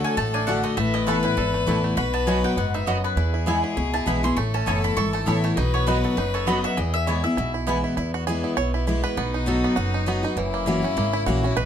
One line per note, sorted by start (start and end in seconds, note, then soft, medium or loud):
0.00 0.16 D3 medium
0.00 0.31 F#3 medium
0.00 0.16 A3 medium
0.00 0.16 D4 medium
0.00 0.17 F#4 medium
0.00 0.78 A4 loud
0.04 0.45 F#4 medium
0.04 0.17 G#5 loud
0.17 0.62 A1 medium
0.17 0.74 A2 medium
0.17 0.61 A3 medium
0.17 0.34 A5 loud
0.34 0.75 D4 medium
0.34 0.46 G#5 medium
0.47 0.76 D3 medium
0.47 0.57 A3 medium
0.47 0.76 A3 medium
0.47 0.77 D4 medium
0.47 0.57 F#4 loud
0.47 0.77 F#4 medium
0.47 0.77 F#4 loud
0.47 0.58 D5 medium
0.47 0.63 F#5 medium
0.47 0.58 A5 loud
0.64 0.76 A3 medium
0.64 0.77 D#5 loud
0.77 1.22 A1 loud
0.77 1.34 A2 loud
0.77 1.21 A3 medium
0.77 1.96 B4 loud
0.77 0.93 E5 loud
0.94 1.24 E4 medium
0.94 1.06 D#5 medium
1.07 1.36 E3 medium
1.07 1.17 A3 loud
1.07 1.36 A3 medium
1.07 1.36 B3 medium
1.07 1.17 E4 medium
1.07 1.37 E4 medium
1.07 1.36 A4 medium
1.07 1.22 B4 medium
1.07 1.18 B4 loud
1.07 1.18 A5 loud
1.23 1.65 E4 medium
1.23 1.51 B4 medium
1.37 1.63 G#1 medium
1.37 1.94 E2 medium
1.37 1.81 A4 medium
1.54 1.83 A3 medium
1.66 1.92 A1 medium
1.66 1.95 E3 medium
1.66 1.77 A3 medium
1.66 1.96 A3 medium
1.66 1.96 B3 medium
1.66 1.77 E4 loud
1.66 1.97 E4 medium
1.66 1.77 B4 medium
1.66 1.78 A5 medium
1.84 1.97 A3 medium
1.97 2.42 B1 medium
1.97 2.55 B2 medium
1.97 2.41 F#4 medium
1.97 3.00 B4 loud
1.97 2.13 B5 loud
2.14 2.57 B3 medium
2.14 2.27 A5 medium
2.27 2.56 F#3 medium
2.27 2.71 F#3 medium
2.27 2.37 B3 medium
2.27 2.56 B3 medium
2.27 2.56 D#4 loud
2.27 2.37 F#4 medium
2.27 2.56 F#4 medium
2.27 2.37 D#5 loud
2.27 2.43 G#5 medium
2.27 2.38 B5 medium
2.44 2.85 F#4 medium
2.44 2.57 G5 medium
2.57 3.02 F#1 medium
2.57 2.86 G#2 medium
2.57 3.04 B3 medium
2.57 2.74 F#5 medium
2.74 3.15 D#4 medium
2.74 2.87 E5 medium
2.86 3.16 F#2 medium
2.86 2.97 B3 medium
2.86 2.97 F#4 medium
2.86 3.17 F#4 medium
2.86 2.97 D#5 loud
2.86 3.04 D#5 medium
2.86 2.98 B5 medium
3.04 4.37 B3 medium
3.04 3.44 B4 medium
3.16 3.62 E2 loud
3.16 3.74 E2 medium
3.16 3.33 E4 medium
3.16 4.39 G#4 loud
3.34 3.46 E4 medium
3.46 3.75 E3 medium
3.46 3.76 G#3 medium
3.46 3.57 B3 medium
3.46 3.76 B3 medium
3.46 3.57 E4 loud
3.46 3.63 E4 medium
3.46 3.76 E4 medium
3.46 3.57 B4 loud
3.46 3.58 G#5 loud
3.64 3.76 E4 medium
3.76 4.02 C#2 medium
3.76 4.34 B2 medium
3.76 3.93 E4 medium
3.94 4.06 E4 medium
3.94 4.07 A5 medium
4.06 4.32 B1 medium
4.06 4.23 E3 medium
4.06 4.23 G#3 medium
4.06 4.17 B3 medium
4.06 4.23 B3 medium
4.06 4.17 E4 medium
4.06 4.37 E4 medium
4.06 4.22 E4 loud
4.06 4.17 B4 loud
4.06 4.18 G#5 loud
4.06 4.23 B5 medium
4.23 4.37 E3 medium
4.23 4.37 B3 soft
4.23 4.36 E4 medium
4.23 4.36 C6 loud
4.36 4.59 A1 medium
4.36 4.94 A2 medium
4.36 4.81 A3 medium
4.36 5.58 A4 loud
4.36 4.53 C#6 loud
4.54 4.95 C#4 medium
4.54 4.67 A5 medium
4.66 4.92 F#1 medium
4.66 4.95 E3 medium
4.66 4.96 A3 medium
4.66 4.77 B3 medium
4.66 4.96 B3 medium
4.66 4.77 E4 loud
4.66 4.96 E4 medium
4.66 4.97 A4 medium
4.66 4.77 C#5 loud
4.66 4.83 G#5 medium
4.66 4.78 A5 loud
4.84 5.25 E4 medium
4.84 4.96 B5 loud
4.96 5.22 G#1 medium
4.96 5.25 E3 medium
4.96 5.41 A4 medium
4.96 5.13 C#6 loud
5.13 5.43 A3 medium
5.13 5.26 A5 medium
5.26 5.52 A1 medium
5.26 5.55 E3 medium
5.26 5.56 A3 medium
5.26 5.37 B3 loud
5.26 5.56 B3 medium
5.26 5.37 E4 medium
5.26 5.58 E4 medium
5.26 5.56 E4 loud
5.26 5.37 C#5 medium
5.26 5.43 E5 medium
5.26 5.38 A5 loud
5.44 5.58 A3 medium
5.44 5.57 C#5 medium
5.57 6.02 B1 medium
5.57 6.15 B2 medium
5.57 5.87 D#4 medium
5.57 6.78 B4 loud
5.57 5.73 D#5 loud
5.74 6.38 B3 medium
5.74 5.87 C#5 medium
5.87 6.16 F#3 medium
5.87 5.97 B3 medium
5.87 6.16 B3 medium
5.87 6.17 D#4 medium
5.87 6.16 D#4 medium
5.87 5.97 F#4 medium
5.87 6.17 F#4 medium
5.87 6.03 B4 medium
5.87 5.97 D#5 loud
5.87 5.98 B5 loud
6.04 6.45 F#4 medium
6.04 6.17 A4 medium
6.17 6.62 F#1 medium
6.17 6.75 F#2 medium
6.17 6.61 D#4 medium
6.17 6.34 B4 medium
6.34 6.75 A4 medium
6.34 6.47 C#5 medium
6.47 6.76 F#3 medium
6.47 6.57 B3 loud
6.47 6.76 B3 medium
6.47 7.67 B3 medium
6.47 6.76 D#4 medium
6.47 6.57 F#4 loud
6.47 6.77 F#4 medium
6.47 6.64 D#5 medium
6.47 6.58 D#5 medium
6.47 6.58 B5 loud
6.64 6.78 F#4 medium
6.64 6.77 E5 loud
6.77 7.23 E2 medium
6.77 7.35 E2 medium
6.77 7.06 E4 medium
6.77 7.84 G#4 medium
6.77 6.93 D#5 medium
6.94 7.07 E5 loud
7.07 7.23 E3 medium
7.07 7.24 G#3 medium
7.07 7.17 B3 medium
7.07 7.24 B3 medium
7.07 7.17 E4 medium
7.07 7.23 E4 medium
7.07 7.18 B4 loud
7.07 7.24 C#5 medium
7.07 7.18 G#5 loud
7.24 7.38 B3 medium
7.24 7.36 E4 medium
7.24 7.37 E4 medium
7.24 7.52 E5 medium
7.37 7.82 B1 medium
7.37 7.95 B2 medium
7.37 7.53 E4 medium
7.54 7.83 E4 medium
7.67 7.96 E3 medium
7.67 7.96 G#3 medium
7.67 7.77 B3 medium
7.67 7.97 B3 medium
7.67 7.97 B3 loud
7.67 7.77 E4 loud
7.67 7.97 E4 loud
7.67 7.78 B4 loud
7.67 7.78 G#5 loud
7.84 7.96 E4 medium
7.97 8.42 E2 medium
7.97 8.55 E2 medium
7.97 9.19 B3 loud
7.97 8.14 E4 medium
8.14 8.27 F#4 medium
8.27 8.56 E3 medium
8.27 8.56 G#3 medium
8.27 8.57 B3 loud
8.27 8.57 E4 medium
8.27 8.56 G#4 medium
8.44 8.73 E4 medium
8.57 9.02 B1 medium
8.57 9.15 B2 medium
8.57 8.74 C#5 loud
8.74 8.86 E4 medium
8.87 9.16 E3 medium
8.87 9.16 G#3 medium
8.87 9.16 B3 medium
8.87 9.03 E4 medium
8.87 9.17 E4 medium
9.04 9.76 B4 loud
9.17 9.62 B1 medium
9.17 9.75 B2 medium
9.17 9.61 B3 medium
9.17 10.39 D#4 loud
9.34 9.75 D#4 medium
9.46 9.75 F#3 medium
9.46 9.76 B3 medium
9.46 9.76 D#4 medium
9.46 9.76 F#4 medium
9.46 9.91 A4 medium
9.64 10.05 B3 medium
9.76 10.22 F#1 medium
9.76 10.34 F#2 medium
9.76 10.49 F#4 medium
9.94 10.23 D#4 medium
10.06 10.23 F#3 medium
10.06 10.23 B3 medium
10.06 10.37 B3 medium
10.06 10.23 D#4 medium
10.06 10.22 F#4 medium
10.23 10.37 D#4 medium
10.23 10.36 F#4 medium
10.36 10.81 F#1 medium
10.36 10.94 F#2 medium
10.36 10.81 E3 medium
10.36 11.51 E4 loud
10.54 10.94 A#3 medium
10.66 10.83 E3 medium
10.66 10.83 A#3 loud
10.66 10.83 C#4 medium
10.66 11.11 E4 medium
10.66 10.81 F#4 loud
10.83 11.25 C#4 medium
10.83 10.97 C#4 medium
10.83 10.96 F#4 medium
10.96 11.22 G#1 medium
10.96 11.54 C#3 medium
10.96 11.41 A#3 medium
11.13 11.26 E4 medium
11.26 11.52 A#1 medium
11.26 11.43 E3 medium
11.26 11.43 A#3 loud
11.26 11.43 C#4 medium
11.26 11.56 F#4 medium
11.26 11.42 F#4 loud
11.43 11.57 C#4 medium
11.43 11.56 F#4 medium
11.51 11.58 E4 medium
11.56 11.65 B1 medium
11.56 11.65 B2 loud
11.56 11.65 D#4 loud
11.56 11.65 B4 medium